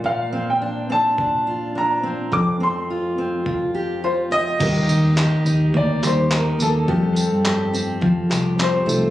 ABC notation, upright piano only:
X:1
M:4/4
L:1/16
Q:"Swing 16ths" 1/4=105
K:Eblyd
V:1 name="Upright piano"
f3 g3 a6 b4 | d'2 c'4 z6 c2 e2- | e8 d2 c2 B2 A2- | A6 z6 c4 |]